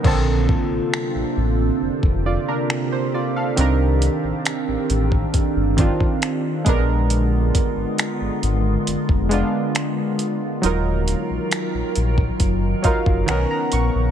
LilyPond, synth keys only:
\new Staff \with { instrumentName = "Synth keys" } { \time 4/4 \key bes \major \tempo 4 = 68 << { r2 r8 <f' d''>16 <d' bes'>8 c''16 <f' d''>16 <a' f''>16~ | <a' f''>16 r2. r8. | r1 | r2 r8 f''8 fis''16 ais''16 cis'''8 | } \\ { <d bes c' a'>4. r2 r8 | <ees c' d' bes'>4. r4 <ees c' d' f'>4 <aes ces' d' bes'>8~ | <aes ces' d' bes'>4 r4. <aes ces' d' f'>4 r8 | <ges ees' f' bes'>4. r4 <ges ees' f' bes'>8 <dis b cis' ais'>4 | } >> }